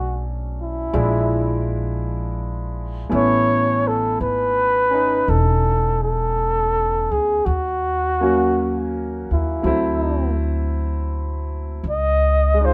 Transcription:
Already playing: upright bass B1, upright piano F#3 A3 C#4 D4 G#4, flugelhorn F#4
0.62 flugelhorn E4
0.93 upright bass A#1, upright piano F3 G#3 D4 E4
3.09 upright bass A1, upright piano A3 B3 C#4 E4
3.15 flugelhorn C#5
3.88 flugelhorn A4
4.21 upright bass G#1, flugelhorn B4
4.90 upright piano C#4 D#4
5.28 upright bass E1, flugelhorn A4
6.03 flugelhorn A4
7.11 upright bass D2, flugelhorn G#4
7.45 upright bass D#2, flugelhorn F#4
8.21 upright piano F#3 A#3 C#4 F#4
9.31 upright bass D#2, flugelhorn E4
9.62 upright bass D2, upright piano F#3 A3 C4
9.66 upright piano E4
11.84 upright bass C#2
11.90 flugelhorn D#5
12.54 upright piano G#3
12.61 upright piano D#4 F4
12.65 flugelhorn C5

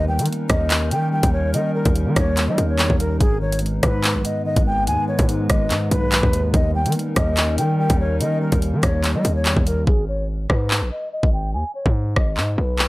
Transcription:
Already playing: 808-style bass D#2, tine electric piano D#3, ambient pad G3 C#4 D#4 A#4
0.08 tine electric piano G3, flute G5
0.19 808-style bass D#3, closed hi-hat
0.26 tine electric piano A#3, closed hi-hat
0.33 closed hi-hat
0.50 808-style bass D#2, flute D#5, kick, cross-stick, closed hi-hat
0.70 clap, closed hi-hat
0.91 tine electric piano D#3, 808-style bass D#3, flute G5, closed hi-hat
1.12 tine electric piano G3, flute G5
1.23 808-style bass D#2, kick, closed hi-hat
1.33 tine electric piano A#3, flute C#5
1.54 tine electric piano D#3, 808-style bass D#3, flute D#5, closed hi-hat
1.75 tine electric piano G3, flute A#4
1.85 808-style bass D#2, kick, closed hi-hat
1.95 tine electric piano A#3, closed hi-hat
2.07 808-style bass D#3
2.16 808-style bass D#2, flute C#5, kick, cross-stick, closed hi-hat
2.37 clap, closed hi-hat
2.48 808-style bass G3, flute D#5
2.58 808-style bass D#2, tine electric piano D#3, closed hi-hat
2.69 flute C#5
2.78 808-style bass E2, tine electric piano G3, clap, closed hi-hat
2.90 808-style bass D#2, kick
3.00 tine electric piano A#3, flute A#4, closed hi-hat
3.20 808-style bass G#1, tine electric piano G#2, ambient pad G#3 B3 B4, flute G#4, kick, closed hi-hat
3.41 tine electric piano D#3, flute C#5
3.52 closed hi-hat
3.59 tine electric piano G#3, closed hi-hat
3.66 closed hi-hat
3.83 808-style bass G#2, flute B4, kick, cross-stick, closed hi-hat
4.04 clap, closed hi-hat
4.15 808-style bass A#1
4.25 tine electric piano G#2, flute D#5, closed hi-hat
4.45 tine electric piano D#3, flute D#5
4.56 808-style bass G#1, kick, closed hi-hat
4.66 tine electric piano G#3, flute G5
4.87 808-style bass D#2, tine electric piano G#2, flute G#5, closed hi-hat
5.08 tine electric piano D#3, flute C#5
5.19 808-style bass G#2, kick, closed hi-hat
5.29 tine electric piano G#3, closed hi-hat
5.49 808-style bass G#1, flute D#5, kick, cross-stick, closed hi-hat
5.71 808-style bass G#2, clap, closed hi-hat
5.91 808-style bass B1, tine electric piano G#2, flute B4, closed hi-hat
6.12 tine electric piano D#3, clap, closed hi-hat
6.23 808-style bass D#2, kick
6.33 tine electric piano G#3, closed hi-hat
6.54 808-style bass D#2, tine electric piano D#3, ambient pad G3 C#4 D#4 A#4, flute D#5, kick, closed hi-hat
6.75 tine electric piano G3, flute G5
6.86 808-style bass D#3, closed hi-hat
6.92 tine electric piano A#3, closed hi-hat
6.99 closed hi-hat
7.16 808-style bass D#2, flute D#5, kick, cross-stick, closed hi-hat
7.37 clap, closed hi-hat
7.58 808-style bass D#3, tine electric piano D#3, flute G5, closed hi-hat
7.79 tine electric piano G3, flute G5
7.90 808-style bass D#2, kick, closed hi-hat
8.00 tine electric piano A#3, flute C#5
8.20 tine electric piano D#3, 808-style bass D#3, flute D#5, closed hi-hat
8.41 tine electric piano G3, flute A#4
8.52 808-style bass D#2, kick, closed hi-hat
8.62 tine electric piano A#3, closed hi-hat
8.73 808-style bass D#3
8.83 808-style bass D#2, flute C#5, kick, cross-stick, closed hi-hat
9.04 clap, closed hi-hat
9.15 808-style bass G3, flute D#5
9.25 808-style bass D#2, tine electric piano D#3, closed hi-hat
9.36 flute C#5
9.45 808-style bass E2, tine electric piano G3, clap, closed hi-hat
9.57 808-style bass D#2, kick
9.66 tine electric piano A#3, flute A#4, closed hi-hat
9.87 808-style bass G#1, flute G#4, kick
10.08 flute C#5
10.50 808-style bass G#2, flute B4, kick, cross-stick
10.71 clap
10.82 808-style bass A#1
10.91 flute D#5
11.12 flute D#5
11.23 808-style bass G#1, kick
11.33 flute G5
11.54 808-style bass D#2, flute G#5
11.75 flute C#5
11.86 808-style bass G#2, kick
12.16 808-style bass G#1, flute D#5, kick, cross-stick
12.37 808-style bass G#2, clap
12.58 808-style bass B1, flute B4
12.79 clap

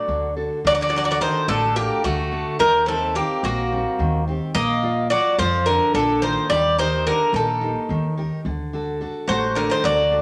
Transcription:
Already playing: bouzouki F#3 D5, steel-string acoustic guitar D4 F#4 A4
0.08 upright bass D2, steel-string acoustic guitar D3
0.37 steel-string acoustic guitar D4 F#4 A4
0.64 upright bass D2, steel-string acoustic guitar D3, bouzouki F#3 D5
0.75 bouzouki F#3 D5
0.81 bouzouki F#3 D5
0.89 bouzouki F#3 D5, steel-string acoustic guitar D4
0.93 bouzouki F#3, steel-string acoustic guitar F#4 A4
0.98 bouzouki D5
1.04 bouzouki F#3 D5
1.11 bouzouki F#3 D5
1.21 bouzouki D#3 C5, steel-string acoustic guitar D4 F#4 A4
1.48 upright bass A1, bouzouki D3 A4, steel-string acoustic guitar A3
1.76 bouzouki A#3 G4, steel-string acoustic guitar D4 F#4 A4
2.04 upright bass D2, steel-string acoustic guitar D3, bouzouki A3 F#4
2.32 steel-string acoustic guitar D4 F#4 A4
2.59 upright bass D#2, bouzouki D#3 A#4, steel-string acoustic guitar D#3
2.86 bouzouki C3 A4, steel-string acoustic guitar C4 D#4 G4
3.15 bouzouki A#3 G4, steel-string acoustic guitar C4 D#4 G4
3.43 upright bass A#1, bouzouki A#3 F#4, steel-string acoustic guitar A#3
3.72 steel-string acoustic guitar G3 C4 D#4
3.99 upright bass D#2, steel-string acoustic guitar D#3
4.28 steel-string acoustic guitar C4 D#4 G4
4.54 upright bass A#1, bouzouki A#3 D#5, steel-string acoustic guitar A#3
4.83 steel-string acoustic guitar F4 A#4 D5
5.10 bouzouki F#3 D5, steel-string acoustic guitar F4 A#4 D5
5.38 upright bass F2, steel-string acoustic guitar F3, bouzouki F3 C5
5.66 bouzouki D3 A#4, steel-string acoustic guitar F4 A#4 D5
5.94 upright bass A#1, bouzouki D3 A4, steel-string acoustic guitar A#3
6.21 bouzouki D#3 C5, steel-string acoustic guitar F4 A#4 D5
6.50 upright bass D#2, steel-string acoustic guitar D#3, bouzouki G3 D5
6.78 bouzouki D#3 C5, steel-string acoustic guitar D#4 G4 A#4
7.06 bouzouki D3 A#4, steel-string acoustic guitar D#4 G4 A#4
7.33 upright bass A#1, bouzouki D#3 A4, steel-string acoustic guitar A#3
7.61 steel-string acoustic guitar A#3 D#4 G4
7.89 upright bass D#2, steel-string acoustic guitar D#3
8.17 steel-string acoustic guitar D#4 G4 A#4
8.45 upright bass D2, steel-string acoustic guitar D3
8.73 steel-string acoustic guitar D4 F#4 A4
9.01 steel-string acoustic guitar D4 F#4 A4
9.28 upright bass A1, bouzouki F#3 C5, steel-string acoustic guitar A3
9.55 bouzouki D3 A#4, steel-string acoustic guitar D4 F#4 A4
9.70 bouzouki D#3 C5
9.84 upright bass D2, steel-string acoustic guitar D3, bouzouki F#3 D5
10.11 steel-string acoustic guitar D4 F#4 A4

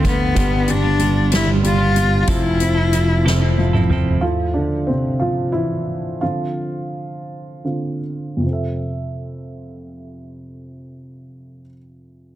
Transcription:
Already playing: fretless electric bass D2, upright piano D3 A3
0.03 clean electric guitar F3 A3 F4, upright piano A3, cello B3, kick, closed hi-hat
0.35 fretless electric bass G1, clean electric guitar G3 B3 D4 F4, upright piano G3, kick, closed hi-hat
0.50 clean electric guitar B3 D4 F4
0.67 upright piano G3, cello D4, closed hi-hat
0.82 clean electric guitar B3 D4 F4
0.98 clean electric guitar G3 B3 D4 F4, upright piano G3, closed hi-hat
1.31 clean electric guitar G3 B3 D4 F4, upright piano G3, cello E4, snare, closed hi-hat
1.47 clean electric guitar B3 D4 F4
1.63 upright piano G3, cello F4, closed hi-hat
1.78 clean electric guitar B3 D4 F4
1.95 clean electric guitar G3 B3 D4 F4, upright piano G3, closed hi-hat
2.23 cello F4
2.27 fretless electric bass F1, clean electric guitar F2 C3 F3 C4 E4 A4, upright piano F3, cello E4, kick, closed hi-hat
2.43 clean electric guitar F3 C4 E4 A4
2.60 upright piano C4, closed hi-hat
2.75 clean electric guitar F3 C4 E4 A4
2.91 clean electric guitar F3 C4 E4 A4, upright piano F3, closed hi-hat
3.24 clean electric guitar F2 C3 F3 C4 E4 A4, upright piano C4, snare
3.40 clean electric guitar F3 C4 E4 A4
3.58 upright piano F3, high tom
3.73 clean electric guitar F3 C4 E4 A4, mid tom
3.90 clean electric guitar F3 C4 E4 A4, upright piano C4, mid tom
4.21 upright piano F3 A3 E4 F4
4.54 upright piano D3 D4
4.87 upright piano C3 C4
5.20 upright piano F3 F4
5.52 upright piano E3 E4
6.21 upright piano D3 F3 C4 F4
7.64 upright piano D3 C4 F4
8.37 upright piano F2 C3
8.43 upright piano F3 C4
8.50 upright piano A4 E5

